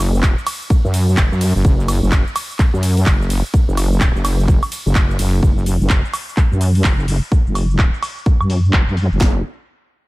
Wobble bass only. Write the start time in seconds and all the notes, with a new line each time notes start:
Already playing: F#1
0.85 F#2
1.17 F#1
1.32 F#2
1.55 F#1
1.65 F#1
2.03 F#1
2.74 F#2
3.06 F#1
3.68 F#1
4.15 F#1
4.86 F#1
5.19 F#1
5.43 F#1
5.81 F#1
6.52 F#2
6.84 F#1
7.46 F#1
8.41 F#2
8.73 F#1
8.88 F#2
9.11 F#1
9.21 F#1